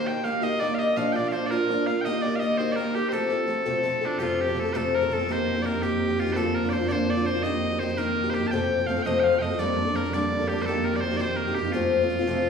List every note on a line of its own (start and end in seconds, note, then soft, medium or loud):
0.00 0.10 C5 medium
0.06 0.24 A#3 soft
0.06 0.25 D#4 medium
0.06 0.25 G4 medium
0.06 0.24 G5 medium
0.06 0.28 G5 medium
0.24 0.43 D#3 medium
0.24 0.43 A#3 medium
0.24 0.42 D#4 medium
0.24 0.41 G4 medium
0.24 0.43 F5 medium
0.24 0.39 F5 medium
0.39 0.61 D#4 medium
0.39 0.61 G4 medium
0.39 0.45 F5 medium
0.43 0.59 D#3 medium
0.43 0.61 A#3 medium
0.43 0.60 D#5 loud
0.43 0.63 D#5 medium
0.60 0.79 D#3 medium
0.60 0.80 A#3 medium
0.60 0.79 D#4 medium
0.60 0.75 D5 medium
0.60 0.81 D5 medium
0.64 0.77 G4 medium
0.75 0.97 G4 medium
0.75 0.79 F5 medium
0.79 0.96 A#3 soft
0.79 0.97 D#4 soft
0.79 0.97 D#5 medium
0.79 0.98 D#5 medium
0.96 1.15 A#2 medium
0.96 1.15 F3 medium
0.96 1.16 A#3 medium
0.96 1.14 D4 medium
0.96 1.12 F4 medium
0.96 1.16 F5 medium
0.96 1.12 F5 medium
1.12 1.32 D4 medium
1.12 1.32 F4 medium
1.12 1.33 D5 medium
1.12 1.28 D5 medium
1.12 1.16 G5 medium
1.17 1.31 A#3 soft
1.28 1.50 F3 medium
1.28 1.32 F5 medium
1.32 1.51 A#3 medium
1.32 1.50 D4 medium
1.32 1.50 F4 medium
1.32 1.46 C5 medium
1.32 1.43 C5 medium
1.44 1.52 C5 medium
1.44 1.51 D5 medium
1.50 1.70 A#2 soft
1.50 1.67 F3 medium
1.50 1.68 A#3 medium
1.50 1.70 D4 medium
1.50 1.70 F4 medium
1.50 1.87 A#4 medium
1.68 1.87 F3 medium
1.68 1.88 A#3 medium
1.68 1.87 D4 medium
1.68 1.85 F4 medium
1.87 2.05 A#3 soft
1.87 2.06 D4 soft
1.87 2.05 F4 medium
1.87 2.01 F5 medium
2.01 2.22 D#5 medium
2.01 2.22 D#5 loud
2.01 2.05 G5 loud
2.06 2.24 D#3 medium
2.06 2.24 A#3 medium
2.06 2.24 D#4 medium
2.06 2.22 G4 medium
2.22 2.42 D#4 soft
2.22 2.42 G4 medium
2.22 2.36 D5 medium
2.22 2.40 D5 medium
2.27 2.42 A#3 soft
2.36 2.57 D#5 medium
2.36 2.40 F5 medium
2.41 2.60 D#3 medium
2.41 2.59 A#3 medium
2.41 2.59 D#4 medium
2.41 2.58 G4 medium
2.41 2.61 D#5 medium
2.57 2.76 D#3 medium
2.57 2.77 A#3 medium
2.57 2.78 D#4 medium
2.57 2.77 G4 medium
2.57 2.72 C5 medium
2.57 2.77 C5 medium
2.72 2.95 A#4 medium
2.72 2.76 D5 medium
2.77 2.95 D#3 medium
2.77 2.96 A#3 medium
2.77 2.95 D#4 medium
2.77 2.93 G4 medium
2.77 2.98 A#4 medium
2.95 3.13 A#3 soft
2.95 3.13 D#4 soft
2.95 3.13 G4 medium
2.95 3.09 G4 medium
2.95 3.16 G4 medium
3.09 3.30 F2 medium
3.09 3.31 C3 medium
3.09 4.06 A4 medium
3.09 3.13 C5 medium
3.13 3.31 F3 medium
3.13 3.31 A3 medium
3.13 3.29 C4 medium
3.13 3.28 A4 medium
3.13 3.86 A4 medium
3.30 3.46 F3 soft
3.30 3.48 A3 soft
3.30 3.49 C4 soft
3.30 3.48 A4 medium
3.47 3.65 F3 medium
3.47 3.65 A3 medium
3.47 3.65 C4 medium
3.47 3.64 A4 medium
3.66 3.85 F2 medium
3.66 3.85 C3 medium
3.66 3.82 F3 medium
3.66 3.83 A3 medium
3.66 3.84 C4 medium
3.66 3.84 A4 medium
3.83 4.02 F3 medium
3.83 4.02 A3 medium
3.83 4.01 C4 medium
3.83 4.00 A4 medium
4.01 4.19 F3 soft
4.01 4.20 A3 soft
4.01 4.20 C4 medium
4.01 4.20 A4 medium
4.06 4.19 D4 medium
4.19 4.47 F2 medium
4.19 8.50 F2 medium
4.19 4.47 C3 medium
4.19 4.47 F3 medium
4.19 4.48 A3 medium
4.19 4.47 C4 medium
4.19 4.41 F4 medium
4.19 4.23 G4 medium
4.19 4.46 A4 medium
4.41 4.60 G4 medium
4.47 4.53 F3 soft
4.47 4.55 A3 soft
4.47 4.56 C4 soft
4.47 4.56 A4 soft
4.55 4.65 F3 soft
4.55 4.65 A3 medium
4.55 4.66 C4 medium
4.55 4.64 A4 medium
4.60 4.73 A4 medium
4.65 4.74 F3 soft
4.65 4.74 A3 soft
4.65 4.74 C4 soft
4.65 4.74 A4 soft
4.73 5.01 F2 medium
4.73 5.02 C3 medium
4.73 5.02 F3 medium
4.73 5.02 A3 medium
4.73 5.01 C4 medium
4.73 5.00 A4 medium
4.73 4.95 A4 medium
4.73 4.76 C5 medium
4.95 5.13 A#4 medium
5.01 5.09 F3 soft
5.01 5.10 A3 soft
5.01 5.11 C4 soft
5.01 5.10 A4 medium
5.10 5.19 F3 medium
5.10 5.20 A3 medium
5.10 5.19 C4 medium
5.10 5.18 A4 medium
5.10 5.32 A4 medium
5.19 5.28 F3 soft
5.19 5.29 A3 soft
5.19 5.29 C4 medium
5.19 5.28 A4 medium
5.29 5.55 D#3 medium
5.29 5.56 A#3 medium
5.29 5.55 D#4 medium
5.29 5.54 G4 medium
5.29 5.62 C5 medium
5.55 5.64 A#3 soft
5.55 5.65 D#4 soft
5.55 5.64 G4 medium
5.62 5.73 D#3 medium
5.62 5.74 A#3 medium
5.62 5.83 A#4 medium
5.62 5.66 D5 medium
5.67 5.74 D#4 medium
5.67 5.72 G4 medium
5.74 5.82 A#3 soft
5.74 5.83 D#4 soft
5.74 5.82 G4 medium
5.83 6.09 D#3 medium
5.83 6.10 A#3 medium
5.83 6.09 D#4 medium
5.83 6.19 G4 medium
5.83 6.07 G4 medium
6.08 6.18 A#3 soft
6.08 6.19 D#4 soft
6.08 6.18 G4 medium
6.19 6.27 D#3 medium
6.19 6.28 A#3 medium
6.19 6.27 D#4 medium
6.19 6.33 F4 medium
6.19 6.25 G4 medium
6.26 6.36 A#3 soft
6.26 6.37 D#4 soft
6.26 6.36 G4 medium
6.33 6.63 D3 medium
6.33 6.63 F3 medium
6.33 6.55 A4 loud
6.33 6.36 C5 loud
6.37 6.63 A#3 medium
6.37 6.63 D4 medium
6.37 6.62 F4 medium
6.55 6.69 A#4 medium
6.63 6.71 A#3 soft
6.63 6.72 D4 medium
6.63 6.72 F4 soft
6.69 6.80 F3 medium
6.69 6.81 A#3 medium
6.69 6.88 C5 medium
6.69 6.73 D5 medium
6.74 6.82 D4 medium
6.74 6.79 F4 medium
6.80 6.90 A#3 soft
6.80 6.89 D4 soft
6.80 6.89 F4 medium
6.88 7.16 D3 medium
6.88 7.17 F3 medium
6.88 7.17 A#3 medium
6.88 7.17 D4 medium
6.88 7.16 F4 medium
6.88 7.10 C5 loud
6.88 6.92 D5 loud
7.10 7.26 D5 medium
7.17 7.25 A#3 soft
7.17 7.26 D4 soft
7.17 7.26 F4 medium
7.25 7.34 F3 medium
7.25 7.35 A#3 medium
7.25 7.35 D4 medium
7.25 7.33 F4 medium
7.25 7.43 C5 medium
7.34 7.44 A#3 soft
7.34 7.44 D4 soft
7.34 7.43 F4 medium
7.43 7.71 D#3 medium
7.43 7.71 A#3 medium
7.43 7.72 D#4 medium
7.43 7.70 G4 medium
7.43 7.79 D#5 loud
7.72 7.80 A#3 soft
7.72 7.81 D#4 soft
7.72 7.80 G4 soft
7.79 7.89 D#3 soft
7.79 7.89 A#3 medium
7.79 7.88 D#4 medium
7.79 7.87 G4 medium
7.79 7.98 C5 medium
7.88 7.97 A#3 soft
7.88 7.98 D#4 soft
7.88 7.97 G4 medium
7.97 8.24 D#3 medium
7.97 8.24 A#3 medium
7.97 8.24 D#4 medium
7.97 8.23 G4 medium
7.97 8.30 A#4 loud
8.24 8.32 A#3 soft
8.24 8.33 D#4 soft
8.24 8.33 G4 medium
8.30 8.42 D#3 soft
8.30 8.42 A#3 medium
8.30 8.34 C5 medium
8.34 8.43 D#4 medium
8.34 8.47 G4 medium
8.34 8.42 G4 medium
8.43 8.53 A#3 soft
8.43 8.53 D#4 soft
8.43 8.51 G4 medium
8.47 12.49 F2 medium
8.47 8.78 F2 medium
8.47 8.87 G5 loud
8.47 8.51 A5 loud
8.52 8.79 C3 medium
8.52 8.79 F3 medium
8.52 8.79 A3 medium
8.52 8.78 C4 medium
8.52 8.77 A4 medium
8.78 8.87 F3 soft
8.78 8.88 A3 soft
8.78 8.88 C4 soft
8.78 8.87 A4 soft
8.87 8.96 F3 medium
8.87 8.97 A3 medium
8.87 8.97 C4 medium
8.87 9.03 F5 medium
8.91 8.95 A4 medium
8.97 9.05 F3 soft
8.97 9.06 A3 soft
8.97 9.06 C4 medium
8.97 9.05 A4 soft
9.03 9.32 F2 medium
9.03 9.32 C3 medium
9.03 9.32 F3 medium
9.03 9.20 D#5 medium
9.03 9.06 G5 medium
9.07 9.33 A3 medium
9.07 9.33 C4 medium
9.07 9.31 A4 medium
9.20 9.24 G5 medium
9.24 9.39 F5 medium
9.32 9.39 F3 soft
9.32 9.41 A3 soft
9.32 9.42 C4 soft
9.32 9.41 A4 soft
9.39 9.50 F3 soft
9.39 9.51 A3 medium
9.39 9.59 D#5 medium
9.39 9.42 G5 medium
9.43 9.50 C4 medium
9.43 9.49 A4 medium
9.50 9.59 F3 soft
9.50 9.60 A3 soft
9.50 9.59 C4 soft
9.50 9.59 A4 medium
9.59 9.86 G2 medium
9.59 9.86 D3 medium
9.59 9.86 G3 medium
9.59 9.86 A#3 medium
9.59 9.85 D4 medium
9.59 9.84 A4 medium
9.59 9.96 D5 loud
9.85 9.93 G3 soft
9.85 9.94 A#3 soft
9.85 9.95 D4 soft
9.85 9.94 A4 medium
9.95 10.04 G3 medium
9.95 10.04 A#3 medium
9.95 10.04 D4 medium
9.95 10.02 A4 medium
9.95 10.13 A#4 medium
10.04 10.13 G3 soft
10.04 10.13 A#3 soft
10.04 10.13 D4 medium
10.04 10.13 A4 soft
10.13 10.40 G2 medium
10.13 10.40 D3 medium
10.13 10.40 G3 medium
10.13 10.40 A#3 medium
10.13 10.40 D4 medium
10.13 10.38 A4 medium
10.13 10.48 D5 medium
10.40 10.48 G3 soft
10.40 10.49 A#3 soft
10.40 10.49 D4 medium
10.40 10.49 A4 soft
10.48 10.58 G3 medium
10.48 10.59 A#3 medium
10.48 10.59 D4 medium
10.48 10.62 G4 medium
10.53 10.57 A4 medium
10.58 10.67 G3 soft
10.58 10.67 A#3 soft
10.58 10.68 D4 soft
10.58 10.67 A4 medium
10.58 10.66 C5 medium
10.66 10.94 D#3 medium
10.66 10.94 A#3 medium
10.66 10.94 D#4 medium
10.66 10.92 G4 medium
10.66 10.85 A4 medium
10.85 10.96 A#4 medium
10.93 11.03 A#3 soft
10.93 11.03 D#4 soft
10.93 11.02 G4 soft
10.93 11.00 D5 medium
11.00 11.11 D#3 medium
11.00 11.12 A#3 medium
11.00 11.17 C5 medium
11.05 11.12 D#4 medium
11.05 11.10 G4 medium
11.11 11.19 A#3 soft
11.11 11.19 D#4 medium
11.11 11.20 G4 medium
11.17 11.47 D#3 medium
11.17 11.47 A#3 medium
11.17 11.21 D5 medium
11.21 11.47 D#4 medium
11.21 11.46 G4 medium
11.21 11.36 C5 medium
11.36 11.55 A#4 medium
11.47 11.56 A#3 soft
11.47 11.57 D#4 soft
11.47 11.56 G4 medium
11.55 11.65 D#3 medium
11.55 11.66 A#3 medium
11.55 11.65 D#4 medium
11.55 11.72 G4 medium
11.59 11.63 G4 medium
11.65 11.74 A#3 soft
11.65 11.75 D#4 soft
11.65 11.74 G4 medium
11.72 12.01 F2 medium
11.72 12.01 C3 medium
11.72 12.01 F3 medium
11.72 12.01 A3 medium
11.72 12.01 C4 medium
11.72 12.49 F4 medium
11.72 12.00 F4 medium
12.01 12.08 F3 soft
12.01 12.09 A3 soft
12.01 12.10 C4 soft
12.01 12.10 F4 soft
12.09 12.19 F3 medium
12.09 12.19 A3 medium
12.09 12.19 C4 medium
12.09 12.17 F4 medium
12.19 12.26 F3 soft
12.19 12.27 A3 medium
12.19 12.28 C4 medium
12.19 12.28 F4 medium
12.27 12.49 F2 medium
12.27 12.49 C3 medium
12.27 12.49 F3 medium
12.27 12.49 A3 medium
12.27 12.49 C4 medium
12.27 12.49 F4 medium